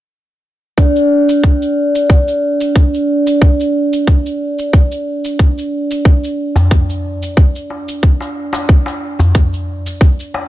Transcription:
0.78 10.48 D4 medium
0.78 10.48 D5 medium
0.78 kick medium
0.78 shaker soft
0.96 shaker soft
1.29 shaker medium
1.44 kick medium
1.44 shaker soft
1.62 shaker soft
1.95 shaker medium
2.10 kick medium
2.10 shaker soft
2.28 shaker soft
2.61 shaker medium
2.76 kick medium
2.76 shaker medium
2.94 shaker soft
3.27 shaker medium
3.42 kick medium
3.42 shaker medium
3.60 shaker soft
3.93 shaker medium
4.07 kick medium
4.07 shaker medium
4.26 shaker soft
4.59 shaker medium
4.73 kick medium
4.73 shaker soft
4.92 shaker soft
5.25 shaker medium
5.39 kick loud
5.39 shaker medium
5.58 shaker soft
5.91 shaker medium
6.05 kick loud
6.05 shaker medium
6.24 shaker soft
6.56 darbuka ka soft
6.56 darbuka dum medium
6.56 shaker medium
6.71 kick loud
6.71 shaker medium
6.90 shaker soft
7.23 shaker medium
7.37 kick loud
7.37 shaker medium
7.56 shaker soft
7.70 darbuka ka soft
7.89 shaker medium
8.03 kick loud
8.03 shaker medium
8.20 darbuka ka medium
8.20 shaker soft
8.53 darbuka tek medium
8.53 shaker medium
8.69 kick loud
8.69 shaker medium
8.86 darbuka tek medium
8.86 shaker soft
9.19 darbuka ka soft
9.19 darbuka dum medium
9.19 shaker medium
9.35 kick medium
9.35 shaker soft
9.53 shaker soft
9.87 shaker medium
10.01 kick loud
10.01 shaker medium
10.20 shaker soft
10.34 darbuka ka soft
10.34 darbuka tek medium

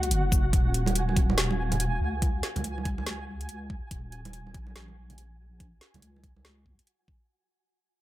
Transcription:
0.00 0.12 C#2 medium
0.00 7.25 A#3 medium
0.00 7.25 F#4 medium
0.00 7.30 F#4 medium
0.00 0.49 D#5 medium
0.00 0.56 F#5 medium
0.00 closed hi-hat soft
0.11 0.52 F#1 loud
0.11 closed hi-hat medium
0.32 kick loud
0.32 shaker medium
0.53 2.00 D#1 medium
0.53 7.25 F5 medium
0.53 7.32 G#5 medium
0.53 kick loud
0.53 closed hi-hat medium
0.74 closed hi-hat soft
0.86 closed hi-hat soft
0.86 high conga medium
0.95 closed hi-hat medium
1.09 high conga medium
1.17 kick loud
1.17 closed hi-hat soft
1.30 high conga medium
1.38 snare loud
1.38 closed hi-hat medium
1.51 high conga medium
1.72 closed hi-hat soft
1.72 low conga medium
1.80 closed hi-hat medium
2.01 2.42 C#2 medium
2.22 kick loud
2.22 closed hi-hat medium
2.43 snare medium
2.43 closed hi-hat medium
2.56 3.81 C#2 medium
2.56 closed hi-hat soft
2.56 high conga medium
2.56 low conga medium
2.64 closed hi-hat medium
2.78 high conga medium
2.85 kick loud
2.85 closed hi-hat medium
2.98 high conga medium
3.07 snare loud
3.07 closed hi-hat medium
3.41 closed hi-hat soft
3.49 closed hi-hat medium
3.70 kick loud
3.91 4.56 D#1 medium
3.91 kick loud
3.91 closed hi-hat medium
4.12 closed hi-hat medium
4.25 closed hi-hat soft
4.25 high conga medium
4.33 closed hi-hat medium
4.47 high conga medium
4.54 5.80 A#1 medium
4.54 kick loud
4.54 closed hi-hat soft
4.67 high conga medium
4.76 snare loud
4.76 closed hi-hat medium
4.88 high conga medium
5.10 closed hi-hat medium
5.10 low conga medium
5.18 closed hi-hat medium
5.60 kick loud
5.60 closed hi-hat medium
5.81 snare medium
5.81 closed hi-hat medium
5.94 6.65 C#2 medium
5.94 closed hi-hat soft
5.94 high conga medium
5.94 low conga medium
6.02 closed hi-hat medium
6.16 high conga medium
6.24 kick medium
6.24 closed hi-hat medium
6.36 high conga medium
6.45 snare loud
6.45 closed hi-hat medium
6.66 6.78 C#2 medium
6.66 kick medium
6.79 closed hi-hat medium
6.87 closed hi-hat medium
7.08 kick medium

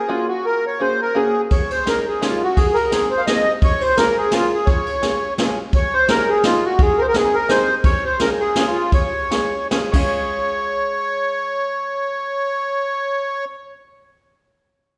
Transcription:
0.09 0.28 A#3 medium
0.09 0.28 C#4 medium
0.09 0.27 F4 medium
0.09 0.28 F#4 medium
0.09 0.29 G#4 medium
0.28 0.46 F#4 medium
0.45 0.65 A#4 medium
0.67 0.82 C#5 medium
0.80 0.99 A#3 soft
0.80 1.00 C#4 soft
0.80 1.00 F#4 soft
0.80 1.00 G#4 medium
0.80 1.01 C5 medium
1.02 1.18 A#4 medium
1.15 1.35 A#3 medium
1.15 1.35 C#4 medium
1.15 1.35 F#4 soft
1.15 1.42 G#4 medium
1.15 1.35 G#4 medium
1.51 1.71 C#5 medium
1.51 kick medium
1.51 ride soft
1.71 1.88 C5 medium
1.71 ride soft
1.86 2.06 G#3 soft
1.86 2.06 C#4 soft
1.86 2.06 D#4 soft
1.86 2.06 G#4 soft
1.86 2.05 A#4 medium
1.86 snare medium
1.86 ride soft
2.07 2.24 G#4 medium
2.22 2.41 G#3 medium
2.22 2.41 C#4 medium
2.22 2.41 D#4 medium
2.22 2.42 F4 medium
2.22 2.41 G#4 medium
2.22 snare medium
2.22 ride soft
2.43 2.59 F#4 medium
2.56 2.76 G#4 medium
2.56 kick medium
2.56 ride medium
2.74 2.92 A#4 medium
2.74 ride soft
2.90 3.11 G#3 soft
2.90 3.11 C4 soft
2.90 3.11 D#4 soft
2.90 3.09 G#4 medium
2.90 3.11 G#4 soft
2.90 snare medium
2.90 ride soft
3.11 3.21 C5 medium
3.18 3.26 F5 medium
3.26 3.47 G#3 medium
3.26 3.47 C4 medium
3.26 3.47 D#4 medium
3.26 3.47 G#4 medium
3.26 3.52 D#5 medium
3.26 snare medium
3.26 ride soft
3.62 3.83 C#5 loud
3.62 kick medium
3.62 ride medium
3.81 3.98 C5 medium
3.81 ride soft
3.97 4.16 G#3 medium
3.97 4.16 C#4 soft
3.97 4.17 F4 soft
3.97 4.17 G#4 soft
3.97 4.17 A#4 loud
3.97 snare medium
3.97 ride soft
4.18 4.34 G#4 medium
4.31 4.52 G#3 medium
4.31 4.52 C#4 medium
4.31 4.52 F4 medium
4.31 4.52 G#4 medium
4.31 snare medium
4.31 ride soft
4.54 4.68 G#4 medium
4.66 5.34 C#5 medium
4.66 kick medium
4.66 ride soft
4.87 ride soft
5.02 5.22 G#3 soft
5.02 5.22 C#4 soft
5.02 5.22 F4 soft
5.02 5.22 G#4 medium
5.02 snare medium
5.02 ride soft
5.38 5.58 G#3 medium
5.38 5.58 C#4 medium
5.38 5.58 F4 medium
5.38 5.58 G#4 medium
5.38 snare medium
5.38 ride soft
5.73 5.94 C#5 medium
5.73 kick medium
5.73 ride soft
5.94 6.10 C5 loud
6.08 6.28 G#3 soft
6.08 6.28 C#4 soft
6.08 6.28 D#4 soft
6.08 6.28 G#4 soft
6.08 6.29 A#4 medium
6.08 snare medium
6.08 ride soft
6.29 6.44 G#4 medium
6.43 6.63 G#3 medium
6.43 6.63 C#4 medium
6.43 6.64 D#4 medium
6.43 6.64 F4 medium
6.43 6.64 G#4 medium
6.43 snare medium
6.43 ride soft
6.65 6.81 F#4 medium
6.79 7.00 G#4 medium
6.79 kick medium
6.79 ride soft
6.98 7.03 A#4 medium
6.98 7.06 C5 medium
7.08 7.16 A#4 loud
7.14 7.34 G#3 soft
7.14 7.34 C4 soft
7.14 7.34 D#4 soft
7.14 7.34 G#4 medium
7.14 7.36 G#4 medium
7.14 snare medium
7.14 ride soft
7.34 7.51 A#4 medium
7.49 7.68 G#3 medium
7.49 7.68 C4 medium
7.49 7.68 D#4 medium
7.49 7.68 G#4 medium
7.49 7.75 C5 medium
7.49 snare medium
7.49 ride soft
7.84 8.04 C#5 loud
7.84 kick medium
7.84 ride soft
8.06 8.20 C5 medium
8.20 8.39 G#3 soft
8.20 8.39 C#4 medium
8.20 8.39 F4 medium
8.20 8.40 G#4 medium
8.20 8.30 A#4 medium
8.20 snare medium
8.20 ride soft
8.40 8.67 G#4 medium
8.56 8.76 G#3 medium
8.56 8.76 C#4 medium
8.56 8.76 F4 medium
8.56 8.76 G#4 medium
8.56 snare medium
8.56 ride soft
8.67 8.91 F4 medium
8.92 9.68 C#5 medium
8.92 kick medium
8.92 ride soft
9.31 9.52 G#3 soft
9.31 9.52 C#4 soft
9.31 9.52 F4 soft
9.31 9.52 G#4 medium
9.31 snare medium
9.31 ride soft
9.71 9.91 G#3 medium
9.71 9.92 C#4 medium
9.71 9.94 F4 medium
9.71 9.94 G#4 medium
9.71 snare medium
9.71 ride soft
9.91 14.04 G#3 medium
9.91 14.06 C#4 medium
9.91 14.07 F4 medium
9.91 13.45 C#5 medium
9.91 kick medium
9.91 crash medium
9.96 14.08 G#4 medium

